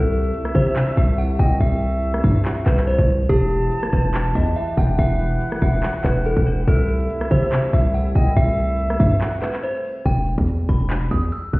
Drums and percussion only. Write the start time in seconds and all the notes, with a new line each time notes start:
0.13 closed hi-hat
0.24 closed hi-hat
0.34 closed hi-hat
0.45 cross-stick
0.54 kick, open hi-hat
0.76 clap, closed hi-hat
0.97 kick
1.18 closed hi-hat
1.39 kick, closed hi-hat
1.60 kick, closed hi-hat
1.81 closed hi-hat
2.03 closed hi-hat
2.14 cross-stick
2.23 kick, closed hi-hat
2.45 clap, closed hi-hat
2.66 kick, clap, closed hi-hat
2.77 clap
2.87 closed hi-hat
2.94 closed hi-hat
2.98 kick, closed hi-hat
3.09 open hi-hat
3.29 kick, closed hi-hat
3.51 closed hi-hat
3.62 closed hi-hat
3.72 closed hi-hat
3.83 cross-stick
3.92 kick, open hi-hat
4.14 clap, closed hi-hat
4.35 kick
4.56 closed hi-hat
4.77 kick, closed hi-hat
4.98 kick, closed hi-hat
5.19 closed hi-hat
5.41 closed hi-hat
5.52 cross-stick
5.61 kick, closed hi-hat
5.83 clap, closed hi-hat
6.04 kick, clap, closed hi-hat
6.25 closed hi-hat
6.36 kick
6.67 kick, closed hi-hat
6.89 closed hi-hat
7.00 closed hi-hat
7.10 closed hi-hat
7.21 cross-stick
7.31 kick, open hi-hat
7.52 clap, closed hi-hat
7.73 kick
7.94 closed hi-hat
8.15 kick, closed hi-hat
8.36 kick, closed hi-hat
8.57 closed hi-hat
8.79 closed hi-hat
8.90 cross-stick
8.99 kick, closed hi-hat
9.21 clap, closed hi-hat
9.42 clap, closed hi-hat
9.53 clap
9.63 closed hi-hat
9.70 closed hi-hat
9.77 closed hi-hat
9.85 open hi-hat
10.05 kick, closed hi-hat
10.26 closed hi-hat
10.38 kick
10.48 closed hi-hat
10.69 kick, closed hi-hat
10.74 closed hi-hat
10.80 closed hi-hat
10.85 closed hi-hat
10.90 clap, closed hi-hat
11.11 kick
11.32 closed hi-hat
11.53 kick, closed hi-hat